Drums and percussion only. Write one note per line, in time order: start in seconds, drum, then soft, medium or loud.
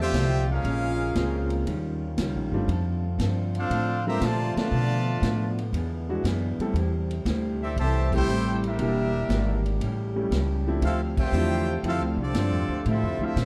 0.14 snare loud
0.14 hi-hat pedal medium
0.14 ride loud
0.65 ride medium
1.15 snare medium
1.15 hi-hat pedal medium
1.15 ride medium
1.50 ride medium
1.67 ride medium
2.18 snare medium
2.18 hi-hat pedal medium
2.18 ride medium
2.69 ride medium
3.19 snare medium
3.19 hi-hat pedal medium
3.19 ride medium
3.55 ride medium
3.71 ride medium
4.22 snare medium
4.22 hi-hat pedal medium
4.22 ride medium
4.57 snare medium
4.57 ride medium
5.23 snare medium
5.23 hi-hat pedal medium
5.23 ride medium
5.59 ride medium
5.74 ride medium
6.25 snare medium
6.25 hi-hat pedal medium
6.25 ride medium
6.60 ride medium
6.76 ride medium
7.11 ride medium
7.26 snare medium
7.26 hi-hat pedal medium
7.26 ride medium
7.78 ride medium
8.12 kick loud
8.12 crash medium
8.28 hi-hat pedal medium
8.64 ride medium
8.79 ride medium
9.30 snare medium
9.30 hi-hat pedal medium
9.30 ride medium
9.66 ride medium
9.81 ride medium
10.32 snare loud
10.32 hi-hat pedal medium
10.32 ride medium
10.82 ride medium
11.17 kick loud
11.17 crash medium
11.33 hi-hat pedal medium
11.84 ride medium
12.34 snare medium
12.34 hi-hat pedal medium
12.34 ride medium
12.86 ride medium
13.37 snare medium
13.37 hi-hat pedal medium
13.37 ride medium